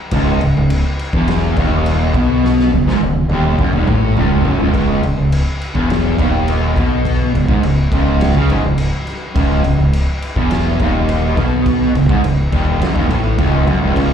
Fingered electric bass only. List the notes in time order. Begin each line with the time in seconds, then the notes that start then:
0.12 C#1
0.41 C#1
0.56 C#1
1.13 E1
1.57 D#1
2.14 B1
2.72 C#1
2.86 G#1
3.00 C#1
3.28 D#1
3.59 F#1
3.72 D#1
3.87 A1
4.16 C#1
4.45 F#1
4.59 C#1
4.74 C#1
5.03 C#1
5.17 C#1
5.75 E1
6.18 D#1
6.76 B1
7.33 C#1
7.48 G#1
7.62 C#1
7.91 C#1
8.35 C#2
8.49 G#1
8.64 C#1
9.35 C#1
9.64 C#1
9.78 C#1
10.36 E1
10.80 D#1
11.37 B1
11.94 C#1
12.09 G#1
12.23 C#1
12.52 D#1
12.81 F#1
12.95 D#1
13.09 A1
13.38 C#1
13.67 F#1
13.82 C#1
13.96 C#1